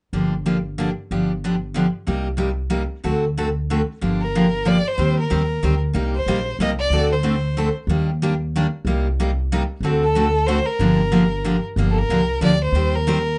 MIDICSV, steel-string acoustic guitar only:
0, 0, Header, 1, 2, 480
1, 0, Start_track
1, 0, Key_signature, -2, "minor"
1, 0, Tempo, 323276
1, 192, Time_signature, 3, 2, 24, 8
1, 19874, End_track
2, 0, Start_track
2, 0, Title_t, "Steel-string acoustic guitar"
2, 0, Program_c, 0, 25
2, 194, Note_on_c, 0, 50, 45
2, 195, Note_on_c, 0, 53, 45
2, 198, Note_on_c, 0, 62, 52
2, 201, Note_on_c, 0, 67, 54
2, 209, Note_on_c, 0, 58, 46
2, 488, Note_off_c, 0, 50, 0
2, 488, Note_off_c, 0, 53, 0
2, 490, Note_off_c, 0, 62, 0
2, 491, Note_off_c, 0, 67, 0
2, 495, Note_off_c, 0, 58, 0
2, 677, Note_on_c, 0, 50, 55
2, 682, Note_on_c, 0, 53, 61
2, 683, Note_on_c, 0, 58, 66
2, 683, Note_on_c, 0, 67, 62
2, 692, Note_on_c, 0, 62, 68
2, 833, Note_off_c, 0, 50, 0
2, 836, Note_off_c, 0, 53, 0
2, 837, Note_off_c, 0, 58, 0
2, 837, Note_off_c, 0, 67, 0
2, 841, Note_off_c, 0, 62, 0
2, 1160, Note_on_c, 0, 50, 69
2, 1160, Note_on_c, 0, 53, 59
2, 1163, Note_on_c, 0, 58, 67
2, 1184, Note_on_c, 0, 62, 67
2, 1188, Note_on_c, 0, 67, 70
2, 1315, Note_off_c, 0, 50, 0
2, 1315, Note_off_c, 0, 53, 0
2, 1317, Note_off_c, 0, 58, 0
2, 1327, Note_off_c, 0, 62, 0
2, 1329, Note_off_c, 0, 67, 0
2, 1649, Note_on_c, 0, 50, 48
2, 1651, Note_on_c, 0, 53, 48
2, 1659, Note_on_c, 0, 59, 52
2, 1660, Note_on_c, 0, 67, 56
2, 1667, Note_on_c, 0, 62, 49
2, 1936, Note_off_c, 0, 50, 0
2, 1938, Note_off_c, 0, 53, 0
2, 1941, Note_off_c, 0, 59, 0
2, 1942, Note_off_c, 0, 67, 0
2, 1945, Note_off_c, 0, 62, 0
2, 2140, Note_on_c, 0, 50, 65
2, 2145, Note_on_c, 0, 53, 64
2, 2148, Note_on_c, 0, 59, 65
2, 2151, Note_on_c, 0, 62, 63
2, 2157, Note_on_c, 0, 67, 69
2, 2286, Note_off_c, 0, 50, 0
2, 2289, Note_off_c, 0, 53, 0
2, 2290, Note_off_c, 0, 59, 0
2, 2291, Note_off_c, 0, 62, 0
2, 2294, Note_off_c, 0, 67, 0
2, 2589, Note_on_c, 0, 50, 68
2, 2605, Note_on_c, 0, 59, 68
2, 2606, Note_on_c, 0, 53, 64
2, 2606, Note_on_c, 0, 62, 73
2, 2609, Note_on_c, 0, 67, 76
2, 2751, Note_off_c, 0, 50, 0
2, 2759, Note_off_c, 0, 53, 0
2, 2759, Note_off_c, 0, 59, 0
2, 2759, Note_off_c, 0, 62, 0
2, 2761, Note_off_c, 0, 67, 0
2, 3067, Note_on_c, 0, 48, 44
2, 3072, Note_on_c, 0, 58, 55
2, 3074, Note_on_c, 0, 55, 51
2, 3081, Note_on_c, 0, 63, 61
2, 3086, Note_on_c, 0, 67, 62
2, 3366, Note_off_c, 0, 48, 0
2, 3369, Note_off_c, 0, 58, 0
2, 3370, Note_off_c, 0, 55, 0
2, 3373, Note_off_c, 0, 63, 0
2, 3376, Note_off_c, 0, 67, 0
2, 3518, Note_on_c, 0, 48, 70
2, 3531, Note_on_c, 0, 58, 68
2, 3532, Note_on_c, 0, 55, 77
2, 3532, Note_on_c, 0, 63, 66
2, 3536, Note_on_c, 0, 67, 65
2, 3696, Note_off_c, 0, 48, 0
2, 3702, Note_off_c, 0, 58, 0
2, 3703, Note_off_c, 0, 55, 0
2, 3703, Note_off_c, 0, 63, 0
2, 3705, Note_off_c, 0, 67, 0
2, 4006, Note_on_c, 0, 55, 64
2, 4009, Note_on_c, 0, 48, 72
2, 4013, Note_on_c, 0, 67, 73
2, 4014, Note_on_c, 0, 58, 74
2, 4016, Note_on_c, 0, 63, 71
2, 4180, Note_off_c, 0, 55, 0
2, 4181, Note_off_c, 0, 48, 0
2, 4184, Note_off_c, 0, 58, 0
2, 4184, Note_off_c, 0, 67, 0
2, 4185, Note_off_c, 0, 63, 0
2, 4507, Note_on_c, 0, 50, 45
2, 4513, Note_on_c, 0, 57, 53
2, 4513, Note_on_c, 0, 60, 49
2, 4519, Note_on_c, 0, 66, 58
2, 4521, Note_on_c, 0, 69, 51
2, 4807, Note_off_c, 0, 50, 0
2, 4810, Note_off_c, 0, 57, 0
2, 4810, Note_off_c, 0, 60, 0
2, 4813, Note_off_c, 0, 66, 0
2, 4814, Note_off_c, 0, 69, 0
2, 5010, Note_on_c, 0, 57, 62
2, 5013, Note_on_c, 0, 50, 58
2, 5015, Note_on_c, 0, 66, 71
2, 5023, Note_on_c, 0, 60, 59
2, 5025, Note_on_c, 0, 69, 74
2, 5162, Note_off_c, 0, 57, 0
2, 5164, Note_off_c, 0, 50, 0
2, 5165, Note_off_c, 0, 66, 0
2, 5169, Note_off_c, 0, 60, 0
2, 5170, Note_off_c, 0, 69, 0
2, 5496, Note_on_c, 0, 50, 71
2, 5505, Note_on_c, 0, 57, 68
2, 5508, Note_on_c, 0, 60, 68
2, 5511, Note_on_c, 0, 66, 72
2, 5511, Note_on_c, 0, 69, 72
2, 5645, Note_off_c, 0, 50, 0
2, 5650, Note_off_c, 0, 57, 0
2, 5651, Note_off_c, 0, 60, 0
2, 5653, Note_off_c, 0, 66, 0
2, 5653, Note_off_c, 0, 69, 0
2, 5960, Note_on_c, 0, 58, 55
2, 5961, Note_on_c, 0, 50, 47
2, 5967, Note_on_c, 0, 62, 59
2, 5968, Note_on_c, 0, 67, 52
2, 5973, Note_on_c, 0, 53, 57
2, 6253, Note_off_c, 0, 58, 0
2, 6254, Note_off_c, 0, 50, 0
2, 6257, Note_off_c, 0, 62, 0
2, 6257, Note_off_c, 0, 67, 0
2, 6260, Note_off_c, 0, 53, 0
2, 6464, Note_on_c, 0, 58, 73
2, 6465, Note_on_c, 0, 50, 67
2, 6469, Note_on_c, 0, 53, 73
2, 6469, Note_on_c, 0, 62, 71
2, 6477, Note_on_c, 0, 67, 74
2, 6610, Note_off_c, 0, 50, 0
2, 6610, Note_off_c, 0, 58, 0
2, 6612, Note_off_c, 0, 53, 0
2, 6612, Note_off_c, 0, 62, 0
2, 6616, Note_off_c, 0, 67, 0
2, 6908, Note_on_c, 0, 50, 64
2, 6912, Note_on_c, 0, 53, 73
2, 6922, Note_on_c, 0, 62, 77
2, 6923, Note_on_c, 0, 58, 72
2, 6927, Note_on_c, 0, 67, 76
2, 7071, Note_off_c, 0, 50, 0
2, 7073, Note_off_c, 0, 53, 0
2, 7078, Note_off_c, 0, 62, 0
2, 7079, Note_off_c, 0, 58, 0
2, 7081, Note_off_c, 0, 67, 0
2, 7389, Note_on_c, 0, 51, 56
2, 7391, Note_on_c, 0, 55, 56
2, 7404, Note_on_c, 0, 72, 55
2, 7407, Note_on_c, 0, 60, 59
2, 7414, Note_on_c, 0, 67, 64
2, 7688, Note_off_c, 0, 51, 0
2, 7689, Note_off_c, 0, 55, 0
2, 7695, Note_off_c, 0, 72, 0
2, 7697, Note_off_c, 0, 60, 0
2, 7700, Note_off_c, 0, 67, 0
2, 7869, Note_on_c, 0, 55, 65
2, 7871, Note_on_c, 0, 51, 64
2, 7878, Note_on_c, 0, 67, 82
2, 7881, Note_on_c, 0, 60, 81
2, 7886, Note_on_c, 0, 72, 66
2, 8031, Note_off_c, 0, 55, 0
2, 8033, Note_off_c, 0, 51, 0
2, 8036, Note_off_c, 0, 67, 0
2, 8038, Note_off_c, 0, 60, 0
2, 8040, Note_off_c, 0, 72, 0
2, 8353, Note_on_c, 0, 55, 72
2, 8360, Note_on_c, 0, 51, 69
2, 8361, Note_on_c, 0, 67, 70
2, 8372, Note_on_c, 0, 60, 76
2, 8375, Note_on_c, 0, 72, 75
2, 8514, Note_off_c, 0, 55, 0
2, 8517, Note_off_c, 0, 51, 0
2, 8517, Note_off_c, 0, 67, 0
2, 8523, Note_off_c, 0, 60, 0
2, 8525, Note_off_c, 0, 72, 0
2, 8811, Note_on_c, 0, 48, 55
2, 8822, Note_on_c, 0, 58, 56
2, 8828, Note_on_c, 0, 55, 56
2, 8830, Note_on_c, 0, 63, 65
2, 8843, Note_on_c, 0, 67, 59
2, 9119, Note_off_c, 0, 48, 0
2, 9124, Note_off_c, 0, 58, 0
2, 9127, Note_off_c, 0, 55, 0
2, 9128, Note_off_c, 0, 63, 0
2, 9134, Note_off_c, 0, 67, 0
2, 9319, Note_on_c, 0, 48, 74
2, 9323, Note_on_c, 0, 58, 76
2, 9326, Note_on_c, 0, 55, 78
2, 9326, Note_on_c, 0, 67, 81
2, 9329, Note_on_c, 0, 63, 83
2, 9477, Note_off_c, 0, 48, 0
2, 9478, Note_off_c, 0, 58, 0
2, 9480, Note_off_c, 0, 55, 0
2, 9480, Note_off_c, 0, 67, 0
2, 9481, Note_off_c, 0, 63, 0
2, 9800, Note_on_c, 0, 55, 69
2, 9803, Note_on_c, 0, 48, 75
2, 9812, Note_on_c, 0, 63, 79
2, 9816, Note_on_c, 0, 58, 82
2, 9822, Note_on_c, 0, 67, 73
2, 9957, Note_off_c, 0, 55, 0
2, 9958, Note_off_c, 0, 48, 0
2, 9963, Note_off_c, 0, 63, 0
2, 9965, Note_off_c, 0, 58, 0
2, 9967, Note_off_c, 0, 67, 0
2, 10278, Note_on_c, 0, 57, 53
2, 10284, Note_on_c, 0, 50, 51
2, 10286, Note_on_c, 0, 66, 57
2, 10287, Note_on_c, 0, 60, 62
2, 10296, Note_on_c, 0, 69, 62
2, 10572, Note_off_c, 0, 57, 0
2, 10575, Note_off_c, 0, 50, 0
2, 10576, Note_off_c, 0, 60, 0
2, 10576, Note_off_c, 0, 66, 0
2, 10581, Note_off_c, 0, 69, 0
2, 10738, Note_on_c, 0, 60, 76
2, 10742, Note_on_c, 0, 50, 65
2, 10743, Note_on_c, 0, 57, 72
2, 10748, Note_on_c, 0, 66, 73
2, 10751, Note_on_c, 0, 69, 71
2, 10905, Note_off_c, 0, 60, 0
2, 10907, Note_off_c, 0, 50, 0
2, 10908, Note_off_c, 0, 57, 0
2, 10911, Note_off_c, 0, 66, 0
2, 10912, Note_off_c, 0, 69, 0
2, 11238, Note_on_c, 0, 60, 66
2, 11239, Note_on_c, 0, 57, 62
2, 11243, Note_on_c, 0, 50, 66
2, 11258, Note_on_c, 0, 69, 74
2, 11259, Note_on_c, 0, 66, 74
2, 11396, Note_off_c, 0, 57, 0
2, 11396, Note_off_c, 0, 60, 0
2, 11398, Note_off_c, 0, 50, 0
2, 11405, Note_off_c, 0, 69, 0
2, 11406, Note_off_c, 0, 66, 0
2, 11720, Note_on_c, 0, 51, 56
2, 11723, Note_on_c, 0, 58, 57
2, 11724, Note_on_c, 0, 55, 58
2, 11730, Note_on_c, 0, 62, 57
2, 11732, Note_on_c, 0, 67, 63
2, 12012, Note_off_c, 0, 51, 0
2, 12014, Note_off_c, 0, 55, 0
2, 12014, Note_off_c, 0, 58, 0
2, 12017, Note_off_c, 0, 62, 0
2, 12018, Note_off_c, 0, 67, 0
2, 12206, Note_on_c, 0, 51, 65
2, 12207, Note_on_c, 0, 55, 74
2, 12219, Note_on_c, 0, 67, 68
2, 12223, Note_on_c, 0, 58, 77
2, 12228, Note_on_c, 0, 62, 70
2, 12359, Note_off_c, 0, 51, 0
2, 12359, Note_off_c, 0, 55, 0
2, 12366, Note_off_c, 0, 67, 0
2, 12368, Note_off_c, 0, 58, 0
2, 12370, Note_off_c, 0, 62, 0
2, 12703, Note_on_c, 0, 51, 78
2, 12712, Note_on_c, 0, 55, 74
2, 12712, Note_on_c, 0, 58, 77
2, 12715, Note_on_c, 0, 67, 69
2, 12722, Note_on_c, 0, 62, 81
2, 12848, Note_off_c, 0, 51, 0
2, 12852, Note_off_c, 0, 55, 0
2, 12852, Note_off_c, 0, 58, 0
2, 12853, Note_off_c, 0, 67, 0
2, 12857, Note_off_c, 0, 62, 0
2, 13165, Note_on_c, 0, 48, 53
2, 13170, Note_on_c, 0, 58, 61
2, 13171, Note_on_c, 0, 55, 59
2, 13178, Note_on_c, 0, 67, 64
2, 13179, Note_on_c, 0, 63, 57
2, 13454, Note_off_c, 0, 48, 0
2, 13457, Note_off_c, 0, 55, 0
2, 13457, Note_off_c, 0, 58, 0
2, 13461, Note_off_c, 0, 63, 0
2, 13461, Note_off_c, 0, 67, 0
2, 13655, Note_on_c, 0, 48, 69
2, 13659, Note_on_c, 0, 55, 73
2, 13660, Note_on_c, 0, 58, 72
2, 13668, Note_on_c, 0, 67, 82
2, 13672, Note_on_c, 0, 63, 74
2, 13803, Note_off_c, 0, 48, 0
2, 13805, Note_off_c, 0, 55, 0
2, 13805, Note_off_c, 0, 58, 0
2, 13810, Note_off_c, 0, 67, 0
2, 13812, Note_off_c, 0, 63, 0
2, 14135, Note_on_c, 0, 48, 75
2, 14138, Note_on_c, 0, 58, 86
2, 14143, Note_on_c, 0, 67, 74
2, 14144, Note_on_c, 0, 55, 74
2, 14147, Note_on_c, 0, 63, 79
2, 14283, Note_off_c, 0, 48, 0
2, 14285, Note_off_c, 0, 58, 0
2, 14287, Note_off_c, 0, 67, 0
2, 14288, Note_off_c, 0, 55, 0
2, 14289, Note_off_c, 0, 63, 0
2, 14595, Note_on_c, 0, 50, 54
2, 14606, Note_on_c, 0, 57, 58
2, 14616, Note_on_c, 0, 69, 62
2, 14619, Note_on_c, 0, 60, 62
2, 14620, Note_on_c, 0, 66, 60
2, 14889, Note_off_c, 0, 50, 0
2, 14894, Note_off_c, 0, 57, 0
2, 14899, Note_off_c, 0, 69, 0
2, 14901, Note_off_c, 0, 60, 0
2, 14901, Note_off_c, 0, 66, 0
2, 15074, Note_on_c, 0, 50, 67
2, 15088, Note_on_c, 0, 57, 69
2, 15088, Note_on_c, 0, 60, 84
2, 15090, Note_on_c, 0, 66, 80
2, 15098, Note_on_c, 0, 69, 72
2, 15232, Note_off_c, 0, 50, 0
2, 15239, Note_off_c, 0, 57, 0
2, 15239, Note_off_c, 0, 60, 0
2, 15240, Note_off_c, 0, 66, 0
2, 15244, Note_off_c, 0, 69, 0
2, 15560, Note_on_c, 0, 50, 76
2, 15562, Note_on_c, 0, 57, 72
2, 15567, Note_on_c, 0, 66, 83
2, 15570, Note_on_c, 0, 69, 79
2, 15573, Note_on_c, 0, 60, 74
2, 15715, Note_off_c, 0, 50, 0
2, 15716, Note_off_c, 0, 57, 0
2, 15718, Note_off_c, 0, 66, 0
2, 15720, Note_off_c, 0, 69, 0
2, 15721, Note_off_c, 0, 60, 0
2, 16027, Note_on_c, 0, 50, 62
2, 16042, Note_on_c, 0, 58, 57
2, 16043, Note_on_c, 0, 53, 56
2, 16048, Note_on_c, 0, 62, 63
2, 16048, Note_on_c, 0, 67, 61
2, 16324, Note_off_c, 0, 50, 0
2, 16332, Note_off_c, 0, 53, 0
2, 16332, Note_off_c, 0, 58, 0
2, 16334, Note_off_c, 0, 62, 0
2, 16335, Note_off_c, 0, 67, 0
2, 16507, Note_on_c, 0, 50, 68
2, 16507, Note_on_c, 0, 53, 73
2, 16515, Note_on_c, 0, 67, 77
2, 16518, Note_on_c, 0, 62, 72
2, 16519, Note_on_c, 0, 58, 71
2, 16668, Note_off_c, 0, 50, 0
2, 16668, Note_off_c, 0, 53, 0
2, 16672, Note_off_c, 0, 67, 0
2, 16673, Note_off_c, 0, 62, 0
2, 16674, Note_off_c, 0, 58, 0
2, 16992, Note_on_c, 0, 50, 73
2, 16999, Note_on_c, 0, 53, 73
2, 17002, Note_on_c, 0, 62, 77
2, 17008, Note_on_c, 0, 58, 65
2, 17015, Note_on_c, 0, 67, 74
2, 17150, Note_off_c, 0, 50, 0
2, 17154, Note_off_c, 0, 53, 0
2, 17155, Note_off_c, 0, 62, 0
2, 17158, Note_off_c, 0, 58, 0
2, 17162, Note_off_c, 0, 67, 0
2, 17481, Note_on_c, 0, 50, 54
2, 17494, Note_on_c, 0, 53, 63
2, 17498, Note_on_c, 0, 62, 59
2, 17501, Note_on_c, 0, 58, 65
2, 17506, Note_on_c, 0, 67, 61
2, 17770, Note_off_c, 0, 50, 0
2, 17776, Note_off_c, 0, 53, 0
2, 17779, Note_off_c, 0, 62, 0
2, 17780, Note_off_c, 0, 58, 0
2, 17783, Note_off_c, 0, 67, 0
2, 17967, Note_on_c, 0, 53, 66
2, 17969, Note_on_c, 0, 50, 73
2, 17974, Note_on_c, 0, 58, 73
2, 17982, Note_on_c, 0, 62, 73
2, 17991, Note_on_c, 0, 67, 76
2, 18117, Note_off_c, 0, 53, 0
2, 18118, Note_off_c, 0, 50, 0
2, 18120, Note_off_c, 0, 58, 0
2, 18124, Note_off_c, 0, 62, 0
2, 18129, Note_off_c, 0, 67, 0
2, 18428, Note_on_c, 0, 50, 71
2, 18433, Note_on_c, 0, 53, 74
2, 18440, Note_on_c, 0, 58, 72
2, 18444, Note_on_c, 0, 62, 80
2, 18445, Note_on_c, 0, 67, 84
2, 18587, Note_off_c, 0, 50, 0
2, 18589, Note_off_c, 0, 53, 0
2, 18593, Note_off_c, 0, 58, 0
2, 18595, Note_off_c, 0, 62, 0
2, 18595, Note_off_c, 0, 67, 0
2, 18920, Note_on_c, 0, 51, 56
2, 18929, Note_on_c, 0, 60, 64
2, 18931, Note_on_c, 0, 55, 61
2, 18936, Note_on_c, 0, 72, 67
2, 18942, Note_on_c, 0, 67, 62
2, 19208, Note_off_c, 0, 51, 0
2, 19212, Note_off_c, 0, 60, 0
2, 19214, Note_off_c, 0, 55, 0
2, 19216, Note_off_c, 0, 72, 0
2, 19219, Note_off_c, 0, 67, 0
2, 19406, Note_on_c, 0, 51, 81
2, 19414, Note_on_c, 0, 55, 86
2, 19415, Note_on_c, 0, 60, 76
2, 19426, Note_on_c, 0, 72, 83
2, 19432, Note_on_c, 0, 67, 77
2, 19555, Note_off_c, 0, 51, 0
2, 19559, Note_off_c, 0, 55, 0
2, 19559, Note_off_c, 0, 60, 0
2, 19565, Note_off_c, 0, 72, 0
2, 19568, Note_off_c, 0, 67, 0
2, 19874, End_track
0, 0, End_of_file